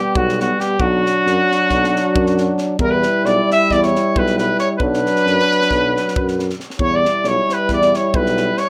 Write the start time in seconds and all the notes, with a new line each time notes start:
Already playing: G3 B3 G4
0.15 B1 F#4, kick
0.29 snare
0.40 F#4, snare
0.59 G4, snare
0.79 B1 F#3 D4 F#4, kick
1.06 snare
1.26 F#2, snare
1.51 snare
1.70 B1, kick, snare
1.84 snare
1.96 snare
2.15 F#2, kick
2.26 snare
2.38 snare
2.58 snare
2.79 E2 G3 E4 A#4, kick
2.91 B4
3.03 snare
3.24 B1 D5, snare
3.49 E5, snare
3.70 E2 D5, kick, snare
3.83 C#5, snare
3.95 snare
4.16 B1 B4, kick
4.27 snare
4.38 B4, snare
4.59 C#5, snare
4.79 B1 F#3 D4 B4, kick
4.94 snare
5.06 snare
5.16 snare
5.25 F#2, snare
5.39 snare
5.51 snare
5.62 snare
5.71 B1, kick, snare
5.97 snare
6.08 snare
6.16 F#2, kick
6.28 snare
6.39 snare
6.50 snare
6.60 snare
6.70 snare
6.77 E2 G3 E4 C#5, kick
6.93 D5
7.05 snare
7.24 B1 C#5, snare
7.49 B4, snare
7.69 E2 D5, kick, snare
7.73 D5
7.82 snare
7.94 C#5, snare
8.14 B1 B4, kick
8.26 snare
8.37 snare
8.57 C#5, snare